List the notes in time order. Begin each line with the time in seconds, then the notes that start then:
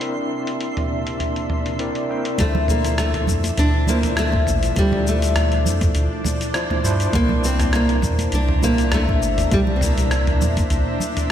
Already playing: C3 A#3 D4 A#4 D5 E5 C6
0.00 C4 E4 A#4 E5, closed hi-hat
0.47 closed hi-hat
0.61 closed hi-hat
0.77 closed hi-hat, mid tom
1.07 closed hi-hat
1.20 closed hi-hat, mid tom
1.36 closed hi-hat
1.50 mid tom
1.66 closed hi-hat
1.79 C4 E4 A#4 D5, closed hi-hat
1.95 closed hi-hat
2.09 C4 E4 A#4 G5
2.25 closed hi-hat
2.38 D2 F3 A3 D4 E4 C5 E5, kick, closed hi-hat, high conga, shaker
2.55 low conga
2.68 A#3, mid tom, shaker
2.84 cross-stick, closed hi-hat, high conga, shaker
2.98 A3, cross-stick, closed hi-hat, shaker
3.14 closed hi-hat, mid tom
3.27 F2, kick, low conga, shaker
3.43 closed hi-hat, high conga, shaker
3.58 D2 D4, closed hi-hat, mid tom, shaker
3.86 F3 A#3 D4 E4 C5, high conga, low conga, shaker
4.03 closed hi-hat, mid tom, shaker
4.17 A3, cross-stick, closed hi-hat, shaker
4.32 kick, high conga
4.47 A1, mid tom, shaker
4.63 closed hi-hat, shaker
4.75 D2 F3 G3 D4 E4 D5, kick, closed hi-hat, high conga, shaker
4.92 mid tom, low conga
5.07 A3, shaker
5.22 closed hi-hat, high conga, shaker
5.36 cross-stick, closed hi-hat, mid tom, shaker
5.52 closed hi-hat
5.66 F2, low conga, shaker
5.81 kick, closed hi-hat, mid tom, high conga, shaker
5.95 D2, closed hi-hat, shaker
6.24 mid tom, high conga, low conga, shaker
6.41 closed hi-hat, shaker
6.54 F3 D4 E4 C5, cross-stick, closed hi-hat, shaker
6.70 mid tom, high conga
6.84 G2 F3 D4 E4 C5, shaker
7.00 closed hi-hat, shaker
7.12 C2 A#3 D4 E4 C5 E5 A#5, kick, closed hi-hat, mid tom, high conga, shaker
7.29 low conga
7.44 C4, shaker
7.59 cross-stick, closed hi-hat, mid tom, high conga, shaker
7.73 A#3, cross-stick, closed hi-hat, shaker
7.89 closed hi-hat
8.02 E2, kick, mid tom, low conga, shaker
8.19 closed hi-hat, high conga, shaker
8.32 C2 D4, closed hi-hat, shaker
8.49 mid tom
8.61 A#2 A#3 D4 E4 C5, high conga, low conga, shaker
8.78 closed hi-hat, shaker
8.92 A3, cross-stick, closed hi-hat, mid tom, shaker
9.09 kick, high conga
9.21 G1, shaker
9.38 closed hi-hat, mid tom, shaker
9.50 C2 G3 A#3 D4 E4 D5, kick, closed hi-hat, high conga, shaker
9.67 low conga
9.76 C4
9.81 A#3, mid tom, shaker
9.98 closed hi-hat, high conga, shaker
10.11 cross-stick, closed hi-hat, shaker
10.27 closed hi-hat, mid tom
10.41 E2, low conga, shaker
10.57 kick, closed hi-hat, high conga, shaker
10.70 C2, closed hi-hat, mid tom, shaker
11.00 high conga, low conga, shaker
11.17 closed hi-hat, mid tom, shaker